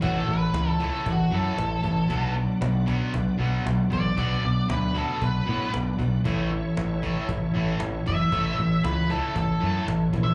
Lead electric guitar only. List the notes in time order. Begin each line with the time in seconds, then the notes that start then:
0.03 F#4
0.18 A4
0.31 B4
0.69 A4
0.84 A4
1.10 F#4
1.34 A4
3.93 D5
4.71 B4
4.97 A4
5.23 B4
8.07 E5
8.84 B4
9.11 A4
9.37 A4
10.24 E5